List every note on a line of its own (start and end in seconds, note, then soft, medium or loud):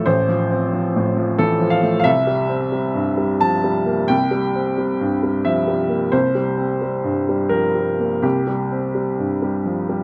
0.00 0.06 A1 soft
0.00 0.10 F3 soft
0.00 0.20 A3 soft
0.06 2.03 A1 medium
0.06 1.39 C5 medium
0.29 0.64 F3 soft
0.51 0.87 C4 soft
0.73 1.09 F3 soft
0.96 1.31 A2 soft
1.17 1.53 F3 soft
1.39 1.62 E3 soft
1.39 1.73 A4 medium
1.60 1.97 F3 soft
1.70 1.98 F5 medium
1.83 2.06 A3 soft
2.00 2.07 F5 medium
2.04 4.06 C2 medium
2.04 3.42 E5 medium
2.27 2.64 G3 soft
2.49 2.86 C4 soft
2.72 3.10 G3 soft
2.95 3.33 G2 soft
3.18 3.56 G3 soft
3.41 3.65 F3 soft
3.41 4.10 A5 medium
3.64 4.01 G3 soft
3.86 4.23 A#3 soft
4.08 6.09 C2 medium
4.08 5.45 G5 medium
4.31 4.69 G3 soft
4.55 4.92 C4 soft
4.78 5.14 G3 soft
5.01 5.37 G2 soft
5.23 5.59 G3 soft
5.45 5.68 F3 soft
5.45 5.79 E5 medium
5.67 6.04 G3 soft
5.89 6.26 A#3 soft
6.12 8.19 C2 soft
6.12 7.51 C5 medium
6.35 6.72 G3 soft
6.58 6.95 C4 soft
6.82 7.19 G3 soft
7.04 7.42 G2 soft
7.29 7.66 G3 soft
7.49 7.75 F3 soft
7.49 8.22 A#4 medium
7.75 8.14 G3 soft
8.00 8.38 A#3 soft
8.22 10.03 C2 soft
8.22 10.01 G4 medium
8.47 8.85 G3 soft
8.72 9.09 C4 soft
8.95 9.33 G3 soft
9.19 9.57 G2 soft
9.42 9.80 G3 soft
9.65 9.89 F3 soft
9.89 10.03 G3 soft